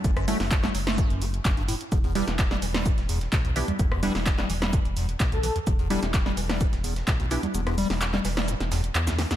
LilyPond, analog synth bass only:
\new Staff \with { instrumentName = "Analog synth bass" } { \clef bass \time 4/4 \key e \dorian \tempo 4 = 128 fis,,8. fis,,8. fis,,8. fis,,8. fis,,8. r16 | e,,8. e,,8. e,,8. e,,8. b,,8. r16 | e,,8. e,,8. e,,8. e,,8. b,,8. r16 | e,,8. e,,8. e,,8. e,,8. b,,8. r16 |
e,,8. e,,8. e,,8. e,,8. e,8. r16 | }